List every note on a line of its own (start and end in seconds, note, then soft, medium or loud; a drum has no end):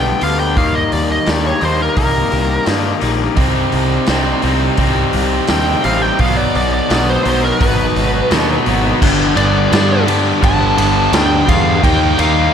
0.00 0.12 B1 loud
0.00 0.19 G2 medium
0.00 0.19 D3 medium
0.00 0.21 G3 medium
0.00 0.21 B3 medium
0.00 0.21 D4 medium
0.00 1.26 G4 medium
0.00 0.22 G5 medium
0.20 0.57 D2 loud
0.20 0.54 G2 medium
0.20 0.54 D3 medium
0.20 0.57 G3 medium
0.20 0.55 B3 medium
0.20 0.55 D4 medium
0.20 0.39 F5 medium
0.20 open hi-hat medium
0.40 0.56 G5 medium
0.57 0.82 D#2 medium
0.57 1.24 D#3 loud
0.57 1.26 G3 loud
0.57 1.26 A#3 loud
0.57 1.27 D#4 loud
0.57 0.74 F5 medium
0.57 kick loud
0.57 open hi-hat medium
0.75 0.92 D#5 medium
0.92 1.17 D#2 medium
0.92 1.09 D5 medium
0.92 open hi-hat medium
1.12 1.29 D#5 medium
1.26 1.52 D#2 medium
1.26 1.59 D#3 medium
1.26 1.61 G3 medium
1.26 1.61 A#3 medium
1.26 1.62 D#4 medium
1.26 2.31 G4 medium
1.26 1.47 D5 medium
1.26 snare loud
1.26 open hi-hat medium
1.47 1.63 C#5 medium
1.61 1.87 D#2 loud
1.61 1.94 D#3 medium
1.61 1.95 G3 medium
1.61 1.95 A#3 medium
1.61 1.96 D#4 medium
1.61 open hi-hat medium
1.65 1.80 C5 medium
1.82 1.97 A#4 medium
1.95 2.22 C2 medium
1.95 2.64 D#3 medium
1.95 2.65 G3 loud
1.95 2.65 A#3 loud
1.95 2.67 D#4 loud
1.95 2.66 A#4 medium
1.95 kick loud
1.95 open hi-hat medium
2.32 2.57 C2 medium
2.32 3.38 G4 medium
2.32 open hi-hat soft
2.65 2.92 G2 medium
2.65 2.99 D#3 medium
2.65 3.00 G3 medium
2.65 3.00 A#3 loud
2.65 3.01 D#4 loud
2.65 snare loud
2.65 open hi-hat medium
3.00 3.27 A#1 medium
3.00 3.34 D#3 medium
3.00 3.35 G3 loud
3.00 3.35 A#3 medium
3.00 3.38 D#4 medium
3.00 open hi-hat medium
3.36 3.62 C2 medium
3.36 4.07 C3 medium
3.36 4.08 G3 loud
3.36 4.08 C4 loud
3.36 4.09 D#4 loud
3.36 kick loud
3.36 open hi-hat medium
3.72 3.98 C2 medium
3.72 open hi-hat soft
4.07 4.33 C2 medium
4.07 4.42 C3 medium
4.07 4.43 G3 medium
4.07 4.44 C4 medium
4.07 4.44 D#4 medium
4.07 snare loud
4.07 open hi-hat medium
4.42 4.68 C2 medium
4.42 4.76 C3 medium
4.42 4.77 G3 medium
4.42 4.77 C4 medium
4.42 4.78 D#4 loud
4.42 open hi-hat medium
4.77 5.03 C2 loud
4.77 5.47 C3 medium
4.77 5.48 G3 loud
4.77 5.48 C4 loud
4.77 5.49 D#4 loud
4.77 kick loud
4.77 open hi-hat medium
5.13 5.39 C2 medium
5.13 open hi-hat medium
5.48 5.74 D#2 loud
5.48 5.82 C3 medium
5.48 5.83 G3 medium
5.48 5.83 C4 medium
5.48 5.84 D#4 loud
5.48 5.84 G5 medium
5.48 snare loud
5.48 open hi-hat medium
5.83 6.10 A1 medium
5.83 6.17 C3 medium
5.83 6.17 G3 medium
5.83 6.18 C4 medium
5.83 6.18 D#4 medium
5.83 6.02 F5 medium
5.83 open hi-hat medium
6.02 6.19 G5 loud
6.19 6.44 B1 medium
6.19 6.87 B2 medium
6.19 6.88 F#3 loud
6.19 6.88 B3 loud
6.19 6.88 D#4 loud
6.19 6.37 F5 loud
6.19 kick loud
6.19 open hi-hat medium
6.37 6.54 D5 medium
6.55 6.80 B1 medium
6.55 6.73 D5 medium
6.55 open hi-hat medium
6.74 6.90 D5 medium
6.89 7.15 B1 loud
6.89 7.23 B2 medium
6.89 7.23 F#3 medium
6.89 7.24 B3 medium
6.89 7.25 D#4 medium
6.89 snare loud
6.89 open hi-hat medium
6.93 7.08 D5 medium
7.10 7.26 C5 loud
7.24 7.50 B1 medium
7.24 7.58 B2 medium
7.24 7.59 F#3 medium
7.24 7.60 B3 medium
7.24 7.60 D#4 medium
7.24 open hi-hat medium
7.29 7.44 C5 medium
7.45 7.61 A#4 medium
7.59 7.86 G#1 medium
7.59 8.28 B2 medium
7.59 8.29 F#3 medium
7.59 8.29 B3 loud
7.59 8.30 D#4 loud
7.59 8.30 B4 medium
7.59 kick loud
7.59 open hi-hat medium
7.96 8.21 G#1 medium
7.96 open hi-hat medium
8.29 8.56 D#2 loud
8.29 8.64 B2 loud
8.29 8.65 F#3 medium
8.29 8.65 B3 medium
8.29 8.65 D#4 loud
8.29 snare loud
8.29 open hi-hat medium
8.65 8.92 G#1 loud
8.65 8.99 B2 medium
8.65 8.99 F#3 medium
8.65 8.99 B3 medium
8.65 8.99 D#4 loud
8.65 open hi-hat medium
9.01 9.32 G1 loud
9.01 9.34 G2 medium
9.01 9.34 D3 loud
9.01 9.36 G3 medium
9.01 9.36 B3 loud
9.01 9.36 D4 loud
9.01 kick loud
9.01 crash loud
9.35 9.66 G1 loud
9.35 9.69 G2 medium
9.35 9.70 D3 loud
9.35 9.70 G3 loud
9.35 9.71 B3 medium
9.35 9.71 D4 loud
9.35 10.03 D5 loud
9.35 ride medium
9.70 10.05 G2 medium
9.70 10.32 G2 medium
9.70 10.05 D3 medium
9.70 10.06 G3 medium
9.70 10.06 B3 medium
9.70 10.06 D4 medium
9.70 snare loud
9.70 ride loud
10.06 10.40 G2 loud
10.06 10.41 D3 loud
10.06 10.42 G3 medium
10.06 10.42 B3 loud
10.06 10.42 D4 loud
10.06 ride medium
10.41 10.73 G1 medium
10.41 10.75 G2 medium
10.41 10.76 D3 medium
10.41 10.77 G3 loud
10.41 10.77 B3 loud
10.41 10.77 D4 medium
10.41 11.15 A5 loud
10.41 kick loud
10.41 ride loud
10.77 11.07 G1 loud
10.77 11.12 G2 medium
10.77 11.12 D3 medium
10.77 11.13 G3 medium
10.77 11.13 B3 loud
10.77 11.13 D4 loud
10.77 ride medium
11.12 11.42 D2 loud
11.12 11.46 G2 loud
11.12 11.46 D3 loud
11.12 11.48 G3 loud
11.12 11.47 B3 loud
11.12 11.47 D4 loud
11.12 11.50 G5 loud
11.12 snare loud
11.12 ride loud
11.47 11.78 E2 loud
11.47 11.81 G2 loud
11.47 11.81 D3 loud
11.47 11.82 G3 loud
11.47 11.81 B3 loud
11.47 11.81 D4 loud
11.47 11.85 F5 loud
11.47 kick medium
11.47 ride medium
11.82 12.14 D#2 loud
11.82 12.17 D#3 loud
11.82 12.19 G3 loud
11.82 12.18 A#3 loud
11.82 12.20 D#4 loud
11.82 12.20 G5 loud
11.82 kick loud
11.82 ride loud
12.18 12.49 D#2 medium
12.18 12.51 D#3 medium
12.18 12.52 G3 medium
12.18 12.52 A#3 loud
12.18 12.53 D#4 loud
12.18 12.54 F5 medium
12.18 ride medium